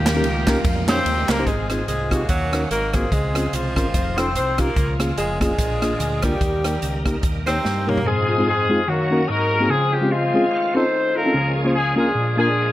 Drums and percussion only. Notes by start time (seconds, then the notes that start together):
0.06 snare, clap, ride
0.24 ride
0.47 kick, snare, clap, ride
0.64 kick, ride
0.88 snare, clap, ride
1.06 ride
1.29 snare, clap, ride
1.47 kick, closed hi-hat
1.70 cross-stick, closed hi-hat
1.88 closed hi-hat
2.11 kick, cross-stick, closed hi-hat
2.29 kick, closed hi-hat
2.53 cross-stick, closed hi-hat
2.71 closed hi-hat
2.93 kick, cross-stick, closed hi-hat
3.12 kick, closed hi-hat
3.35 cross-stick, closed hi-hat
3.53 closed hi-hat
3.76 kick, cross-stick, closed hi-hat
3.94 kick, closed hi-hat
4.18 cross-stick, closed hi-hat
4.35 closed hi-hat
4.58 kick, cross-stick, closed hi-hat
4.76 kick, closed hi-hat
5.00 cross-stick, closed hi-hat
5.18 closed hi-hat
5.41 kick, cross-stick, closed hi-hat
5.58 kick, closed hi-hat
5.82 cross-stick, closed hi-hat
6.00 closed hi-hat
6.22 kick, cross-stick, closed hi-hat
6.41 kick, closed hi-hat
6.64 cross-stick, closed hi-hat
6.82 closed hi-hat
7.06 kick, cross-stick, closed hi-hat
7.23 kick, closed hi-hat
7.47 cross-stick, closed hi-hat
7.65 snare
7.89 mid tom
7.97 floor tom